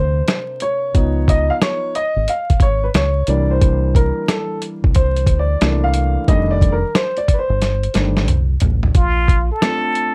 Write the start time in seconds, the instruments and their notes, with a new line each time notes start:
Already playing: fingered electric bass D2, grand piano C3 A#3 D4 C5
0.28 snare, closed hi-hat
0.60 grand piano C#5, closed hi-hat
0.94 fingered electric bass C#2, grand piano F3 B3 D#4, kick, closed hi-hat
1.28 grand piano D#5, kick, closed hi-hat
1.50 grand piano F5
1.62 grand piano C#5, snare, closed hi-hat
1.95 grand piano D#5, closed hi-hat
2.16 fingered electric bass G#1
2.28 grand piano F5, closed hi-hat
2.50 kick, closed hi-hat
2.60 fingered electric bass G#1, grand piano C#5, kick, closed hi-hat
2.84 grand piano B4
2.94 fingered electric bass C#2, grand piano C#5, snare, closed hi-hat
3.27 fingered electric bass C2, grand piano E3 G3 A#3 D4 D5, closed hi-hat
3.51 grand piano C5
3.61 kick, closed hi-hat
3.95 grand piano A#4, kick, closed hi-hat
4.28 grand piano A4, snare, closed hi-hat
4.62 closed hi-hat
4.84 fingered electric bass C2, kick
4.95 grand piano C5, kick, closed hi-hat
5.17 closed hi-hat
5.26 fingered electric bass D2, kick, closed hi-hat
5.39 grand piano D5
5.61 fingered electric bass C2, grand piano E3 A3 A#3 D4, snare, closed hi-hat
5.84 grand piano F5
5.94 closed hi-hat
6.28 fingered electric bass F1, grand piano D#3 G3 A3 D4 D#5, kick, closed hi-hat
6.51 grand piano D5
6.61 kick, closed hi-hat
6.72 grand piano A#4
6.95 grand piano C5, snare, closed hi-hat
7.17 grand piano D5, closed hi-hat
7.28 kick, closed hi-hat
7.33 grand piano B4
7.39 grand piano C5
7.50 fingered electric bass G1
7.62 snare, closed hi-hat
7.83 closed hi-hat
7.94 fingered electric bass G1, grand piano D#3 G3 A3 D4, snare, closed hi-hat
8.17 snare
8.28 fingered electric bass C2, closed hi-hat, mid tom
8.60 fingered electric bass A1, closed hi-hat, floor tom
8.83 floor tom
8.95 fingered electric bass A#1, muted trumpet F4, kick, closed hi-hat
9.28 kick, closed hi-hat
9.52 muted trumpet A4
9.61 grand piano A3 C4 D4 F4, snare, closed hi-hat
9.95 closed hi-hat